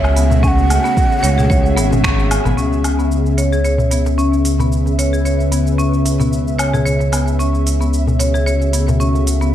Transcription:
0.00 0.79 C#2 medium
0.00 6.85 C#3 medium
0.00 2.58 A3 loud
0.00 9.55 C#4 medium
0.00 3.53 F#4 medium
0.00 9.55 G#4 loud
0.00 0.15 C#5 loud
0.00 0.45 E5 loud
0.00 9.55 E5 medium
0.04 darbuka tek medium
0.04 cabasa soft
0.04 low woodblock medium
0.16 0.25 B3 medium
0.16 open hi-hat medium
0.16 cabasa medium
0.31 darbuka ka medium
0.31 darbuka dum medium
0.31 cabasa soft
0.43 0.83 C#4 medium
0.43 0.49 G#5 loud
0.43 kick loud
0.43 cabasa soft
0.48 2.04 F#5 loud
0.58 darbuka ka medium
0.58 cabasa soft
0.70 open hi-hat medium
0.70 cabasa medium
0.70 low woodblock medium
0.84 0.96 B3 medium
0.84 cabasa soft
0.97 kick loud
0.97 cabasa soft
1.12 cabasa soft
1.23 1.78 C#2 loud
1.23 1.37 C#5 loud
1.23 open hi-hat medium
1.23 cabasa medium
1.38 1.49 G#4 medium
1.38 darbuka dum medium
1.38 cabasa soft
1.50 1.76 C#5 loud
1.50 kick loud
1.50 cabasa soft
1.66 cabasa soft
1.76 2.39 G#1 medium
1.76 1.85 B3 medium
1.76 open hi-hat loud
1.76 darbuka ka medium
1.76 darbuka tek medium
1.76 cabasa medium
1.91 darbuka ka medium
1.91 darbuka dum medium
1.91 cabasa soft
2.04 2.44 C#4 medium
2.04 finger snap medium
2.04 kick loud
2.04 cabasa soft
2.18 darbuka ka soft
2.18 cabasa soft
2.31 open hi-hat medium
2.31 darbuka tek soft
2.31 cabasa medium
2.31 low woodblock medium
2.45 2.54 G#1 loud
2.45 2.57 B3 medium
2.45 darbuka ka medium
2.45 darbuka dum medium
2.45 cabasa soft
2.57 6.84 C#2 medium
2.57 2.97 C#4 medium
2.57 cabasa soft
2.72 darbuka ka soft
2.72 cabasa soft
2.84 open hi-hat medium
2.84 cabasa medium
2.84 low woodblock medium
2.99 3.10 B3 medium
2.99 cabasa soft
3.05 8.59 B4 medium
3.12 cabasa soft
3.26 cabasa soft
3.38 3.52 C#5 medium
3.38 open hi-hat medium
3.38 cabasa medium
3.52 3.63 G#4 medium
3.52 cabasa soft
3.64 3.90 C#5 medium
3.64 cabasa soft
3.78 darbuka dum medium
3.78 cabasa soft
3.91 4.00 B3 medium
3.91 open hi-hat medium
3.91 darbuka ka medium
3.91 cabasa medium
4.06 darbuka tek medium
4.06 cabasa soft
4.18 4.58 C#4 medium
4.18 cabasa soft
4.33 cabasa soft
4.45 open hi-hat medium
4.45 cabasa medium
4.60 4.71 B3 medium
4.60 darbuka ka medium
4.60 darbuka dum medium
4.60 cabasa soft
4.72 cabasa soft
4.86 darbuka ka soft
4.86 cabasa soft
4.99 5.13 C#5 medium
4.99 open hi-hat medium
4.99 cabasa medium
5.13 5.24 G#4 medium
5.13 cabasa soft
5.25 5.51 C#5 medium
5.25 cabasa soft
5.40 cabasa soft
5.52 5.60 B3 medium
5.52 open hi-hat medium
5.52 darbuka tek soft
5.52 cabasa medium
5.67 cabasa soft
5.78 6.19 C#4 medium
5.78 cabasa soft
5.94 cabasa soft
6.05 open hi-hat medium
6.05 darbuka ka medium
6.05 cabasa medium
6.20 6.32 B3 medium
6.20 darbuka ka soft
6.20 darbuka dum medium
6.20 cabasa soft
6.33 cabasa soft
6.48 cabasa soft
6.59 6.73 C#5 medium
6.59 open hi-hat medium
6.59 cabasa medium
6.59 low woodblock medium
6.73 6.85 G#4 medium
6.73 darbuka ka medium
6.73 darbuka tek medium
6.73 darbuka dum medium
6.73 cabasa soft
6.85 9.55 C#2 medium
6.85 9.55 C#3 medium
6.85 7.11 C#5 medium
6.85 cabasa soft
7.00 darbuka ka soft
7.00 cabasa soft
7.07 9.55 F#4 medium
7.12 7.21 B3 medium
7.12 open hi-hat medium
7.12 cabasa medium
7.12 low woodblock soft
7.28 cabasa soft
7.39 7.80 C#4 medium
7.39 cabasa soft
7.55 cabasa soft
7.67 open hi-hat medium
7.67 cabasa medium
7.79 9.55 A3 medium
7.79 7.92 B3 medium
7.79 cabasa soft
7.94 cabasa soft
8.07 darbuka dum medium
8.07 cabasa soft
8.19 8.34 C#5 medium
8.19 open hi-hat medium
8.19 darbuka ka medium
8.19 cabasa medium
8.34 8.45 G#4 medium
8.34 darbuka tek medium
8.34 cabasa soft
8.46 8.72 C#5 medium
8.46 cabasa soft
8.62 cabasa soft
8.73 8.82 B3 medium
8.73 open hi-hat medium
8.73 cabasa medium
8.88 darbuka ka medium
8.88 darbuka dum medium
8.88 cabasa soft
9.00 9.40 C#4 medium
9.00 cabasa soft
9.15 darbuka ka soft
9.15 cabasa soft
9.27 open hi-hat medium
9.27 cabasa medium
9.41 9.53 B3 medium
9.41 cabasa soft

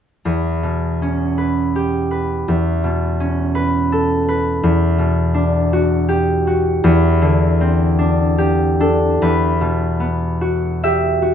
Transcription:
0.25 2.47 E2 soft
0.63 2.51 B2 soft
1.02 3.19 C#4 soft
1.38 2.10 B4 soft
1.76 2.52 G4 soft
2.11 3.54 B4 soft
2.48 4.62 E2 soft
2.84 4.66 B2 soft
3.20 4.66 C#4 soft
3.55 4.27 B4 soft
3.92 4.66 A4 soft
4.28 6.87 B4 soft
4.63 6.83 E2 soft
4.98 6.87 B2 soft
5.34 7.97 D4 soft
5.73 6.46 F#4 soft
6.09 8.37 G4 soft
6.47 6.87 F#4 soft
6.84 9.21 E2 medium
7.22 9.26 D3 soft
7.61 9.26 C4 soft
7.99 8.79 D4 soft
8.38 10.83 G4 soft
8.80 9.25 D4 soft
8.80 9.25 A4 soft
9.22 11.34 E2 soft
9.22 11.34 B4 medium
9.61 11.34 B2 soft
10.00 11.34 B3 soft
10.41 11.21 F#4 soft
10.84 11.34 G4 soft
10.84 11.34 E5 medium
11.22 11.34 F#4 soft

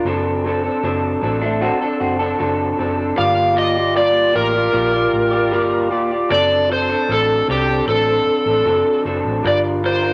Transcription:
0.04 0.67 F#1 loud
0.04 0.43 F#3 medium
0.04 0.44 C4 medium
0.04 0.45 D4 medium
0.04 0.45 A4 medium
0.44 0.64 F#3 medium
0.44 0.64 C4 medium
0.44 0.64 D4 medium
0.44 0.62 A4 medium
0.64 0.83 C4 medium
0.64 0.83 D4 medium
0.64 0.83 A4 medium
0.83 1.15 F#1 medium
0.83 1.20 F#3 medium
0.83 1.22 C4 medium
0.83 1.23 D4 medium
0.83 1.22 A4 medium
1.21 1.69 A1 medium
1.21 1.42 F#3 medium
1.21 1.42 C4 medium
1.21 1.42 D4 medium
1.21 1.40 A4 medium
1.41 1.61 A3 medium
1.41 1.61 C4 soft
1.41 1.61 D4 medium
1.41 1.61 A4 medium
1.61 1.81 F#3 medium
1.61 1.82 C4 medium
1.61 1.81 D4 medium
1.61 1.80 F#4 medium
1.61 1.79 A4 medium
1.80 2.21 C4 soft
1.80 2.20 D4 medium
1.80 2.18 A4 medium
2.00 2.32 F#1 medium
2.00 2.19 C4 medium
2.00 2.19 F#4 medium
2.19 2.38 C4 medium
2.19 2.39 D4 medium
2.19 2.39 A4 medium
2.39 2.71 F#1 medium
2.39 2.77 F#3 medium
2.39 2.77 C4 medium
2.39 2.79 D4 medium
2.39 2.79 A4 loud
2.78 3.10 F#1 medium
2.78 2.98 F#3 medium
2.78 2.98 C4 medium
2.78 2.97 D4 medium
2.78 2.96 A4 medium
2.98 3.16 C4 soft
2.98 3.17 D4 soft
2.98 3.17 A4 soft
3.16 4.32 G1 loud
3.16 3.56 G3 medium
3.16 3.53 A#3 medium
3.16 3.54 F4 medium
3.16 3.55 G4 medium
3.16 3.55 D5 medium
3.16 3.54 F5 medium
3.54 3.75 A#3 medium
3.54 3.76 F4 medium
3.54 3.75 G4 medium
3.54 3.74 D5 medium
3.58 3.97 D#5 medium
3.75 3.95 F4 medium
3.75 3.94 G4 medium
3.75 3.95 D5 medium
3.95 4.35 G3 medium
3.95 4.32 A#3 medium
3.95 4.33 F4 medium
3.95 4.34 G4 medium
3.95 4.34 D5 medium
3.95 4.33 D5 medium
4.33 4.66 A1 medium
4.33 4.54 A#3 medium
4.33 4.54 F4 medium
4.33 4.53 G4 medium
4.33 5.88 A#4 medium
4.33 4.52 D5 medium
4.53 4.72 F4 soft
4.53 4.73 G4 soft
4.53 4.73 D5 soft
4.72 5.06 A#1 medium
4.72 4.93 A#3 medium
4.72 4.93 F4 medium
4.72 4.92 G4 medium
4.72 4.90 D5 medium
4.91 5.32 F4 soft
4.91 5.32 G4 soft
4.91 5.30 D5 soft
5.13 5.52 A1 medium
5.31 5.52 F4 soft
5.31 5.52 G4 medium
5.31 5.52 D5 medium
5.51 5.91 G1 medium
5.51 5.91 G3 medium
5.51 5.88 A#3 medium
5.51 5.89 F4 medium
5.51 5.90 G4 medium
5.51 5.91 D5 loud
5.90 6.23 D#1 medium
5.90 6.10 A#3 medium
5.90 6.11 F4 medium
5.90 6.11 G4 medium
5.90 6.10 D5 medium
6.11 6.31 F4 soft
6.11 6.30 G4 soft
6.11 6.31 D5 soft
6.29 6.93 F#1 medium
6.29 6.69 F#3 medium
6.29 6.69 C4 medium
6.29 6.70 D4 medium
6.29 6.70 A4 medium
6.29 6.68 D5 loud
6.70 6.89 F#3 medium
6.70 6.90 C4 medium
6.70 6.89 D4 medium
6.70 6.88 A4 medium
6.70 7.11 C5 medium
6.89 7.08 C4 soft
6.89 7.09 D4 medium
6.89 7.09 A4 medium
7.09 7.40 A1 medium
7.09 7.47 F#3 medium
7.09 7.48 C4 medium
7.09 7.48 D4 medium
7.09 7.49 A4 medium
7.09 7.51 A4 medium
7.48 7.79 C2 medium
7.48 7.68 F#3 medium
7.48 7.68 C4 medium
7.48 7.68 D4 medium
7.48 7.88 G4 medium
7.48 7.67 A4 medium
7.68 7.86 C4 soft
7.68 7.87 D4 soft
7.68 7.87 A4 medium
7.87 8.18 A1 medium
7.87 8.06 F#3 medium
7.87 8.07 C4 medium
7.87 8.07 D4 medium
7.87 9.01 A4 medium
7.87 8.05 A4 medium
8.07 8.47 C4 soft
8.07 8.47 D4 soft
8.07 8.45 A4 soft
8.27 muted fingered electric bass stroke soft
8.46 8.61 A1 medium
8.46 8.66 C4 soft
8.46 8.66 D4 soft
8.46 8.66 A4 soft
8.65 8.81 F#1 medium
8.65 9.03 F#3 medium
8.65 9.04 C4 medium
8.65 9.05 D4 medium
8.65 9.05 A4 medium
9.04 9.20 F#1 medium
9.04 9.43 F#3 medium
9.04 9.44 C4 medium
9.04 9.43 D4 medium
9.04 9.44 A4 medium
9.25 9.40 A1 medium
9.43 10.13 G1 loud
9.43 9.82 G3 medium
9.43 9.83 D4 medium
9.43 9.83 F4 medium
9.43 9.83 A#4 medium
9.47 9.57 D5 medium
9.83 10.02 G3 medium
9.83 10.03 D4 medium
9.83 10.03 F4 medium
9.83 10.02 A#4 medium
9.83 10.13 C5 medium
10.03 10.13 D4 soft
10.03 10.13 F4 soft
10.03 10.13 A#4 medium

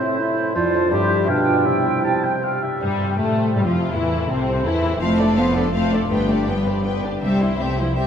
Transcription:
0.00 0.56 A2 soft
0.00 0.21 C4 medium
0.00 1.30 C4 soft
0.00 0.36 E4 soft
0.00 0.19 C5 soft
0.00 0.51 C5 soft
0.00 0.51 E5 soft
0.19 0.55 E4 medium
0.19 1.30 C5 soft
0.37 0.57 E4 soft
0.55 0.93 F2 soft
0.55 0.93 F3 medium
0.55 0.91 F4 medium
0.55 1.31 C5 medium
0.55 0.91 D5 soft
0.73 0.93 D4 soft
0.73 0.93 A4 soft
0.91 1.30 G2 medium
0.91 1.29 G3 medium
0.91 1.30 G4 medium
0.91 1.29 E5 medium
1.09 1.30 E4 soft
1.09 1.46 G4 soft
1.28 1.65 B2 soft
1.28 1.68 B2 soft
1.28 1.67 D4 medium
1.28 1.67 F5 soft
1.28 2.63 G5 soft
1.46 1.68 F4 soft
1.46 2.03 G4 soft
1.66 2.80 C3 soft
1.66 2.60 C3 soft
1.66 2.43 E4 medium
1.66 2.01 E5 soft
1.85 2.98 C4 soft
2.04 2.41 G4 soft
2.04 2.25 A5 soft
2.23 3.35 C5 soft
2.23 2.45 G5 soft
2.43 3.17 G4 soft
2.43 2.64 F5 soft
2.62 3.74 E4 soft
2.62 2.82 E5 soft
2.80 3.16 G2 soft
2.80 3.94 C3 soft
2.80 3.15 G3 medium
2.80 3.16 G3 medium
2.99 4.10 C4 soft
3.19 3.56 A2 soft
3.19 3.56 A3 medium
3.19 3.55 A3 soft
3.19 3.56 A3 medium
3.19 3.55 G4 soft
3.37 4.47 C5 soft
3.55 3.66 G2 soft
3.55 3.65 G3 medium
3.55 3.60 G3 soft
3.55 3.65 G3 medium
3.55 3.66 G3 soft
3.55 3.94 G4 soft
3.65 3.93 F2 soft
3.65 3.73 F3 medium
3.65 3.94 F3 medium
3.65 3.92 F4 soft
3.65 3.93 F4 soft
3.75 4.82 E4 soft
3.92 4.29 E2 soft
3.92 5.03 A2 soft
3.92 4.28 E3 medium
3.92 4.30 E3 medium
3.92 4.29 E4 medium
3.92 4.30 E4 medium
4.12 5.18 C4 soft
4.29 4.66 C2 soft
4.29 4.66 C3 medium
4.29 4.66 C4 medium
4.29 4.65 C4 medium
4.29 4.64 A4 soft
4.48 5.54 C5 soft
4.65 5.01 E2 medium
4.65 5.02 E3 medium
4.65 5.01 E4 medium
4.65 5.02 E4 medium
4.65 5.36 A4 soft
4.83 5.03 E4 soft
5.01 6.07 F1 medium
5.01 6.12 F2 medium
5.01 5.37 A3 medium
5.01 5.19 C4 medium
5.01 5.18 C5 soft
5.01 5.18 F5 medium
5.19 6.12 C4 soft
5.19 5.38 D4 soft
5.19 5.37 A4 soft
5.19 5.37 D5 medium
5.38 5.75 B3 medium
5.38 5.56 C4 soft
5.38 5.73 A4 soft
5.38 5.56 C5 soft
5.38 5.56 F5 soft
5.55 5.74 D4 soft
5.55 5.74 A4 soft
5.55 6.12 C5 soft
5.55 5.74 D5 soft
5.74 6.10 A3 medium
5.74 5.91 C4 soft
5.74 6.12 A4 soft
5.74 5.91 C5 soft
5.74 5.91 F5 soft
5.92 7.02 D4 soft
5.92 6.11 D4 soft
5.92 6.11 A4 soft
5.92 6.11 D5 soft
6.10 7.02 G1 soft
6.10 7.24 G2 soft
6.10 6.48 A3 medium
6.10 6.29 B3 soft
6.10 6.28 B4 soft
6.10 6.29 G5 soft
6.29 7.24 B3 soft
6.29 6.48 D4 soft
6.29 6.49 G4 soft
6.29 6.49 D5 soft
6.47 6.86 G3 medium
6.47 6.67 B3 soft
6.47 6.67 B4 soft
6.47 6.84 D5 soft
6.47 6.67 G5 soft
6.66 6.86 D4 soft
6.66 6.86 G4 soft
6.66 7.24 B4 soft
6.66 6.86 D5 soft
6.85 7.03 B3 soft
6.85 7.03 B4 soft
6.85 7.24 D5 soft
6.85 7.03 G5 soft
7.03 7.24 D4 soft
7.03 7.23 D4 soft
7.03 7.21 G4 soft
7.03 7.23 D5 soft
7.22 8.07 C2 soft
7.22 8.07 C3 soft
7.22 7.57 G3 medium
7.22 7.40 C4 soft
7.22 7.40 G4 soft
7.22 7.40 E5 soft
7.41 8.07 C4 soft
7.41 7.60 E4 soft
7.41 7.59 C5 soft
7.59 7.79 A3 medium
7.59 7.78 C4 soft
7.59 7.78 G4 soft
7.59 7.95 C5 soft
7.59 7.78 E5 soft
7.78 7.97 F3 medium
7.78 8.07 E4 soft
7.78 7.96 E4 soft
7.78 7.97 E4 soft
7.78 7.96 C5 soft
7.96 8.06 G3 medium
7.96 8.07 C4 soft
7.96 8.07 G4 soft
7.96 8.07 C5 soft
7.96 8.07 E5 soft

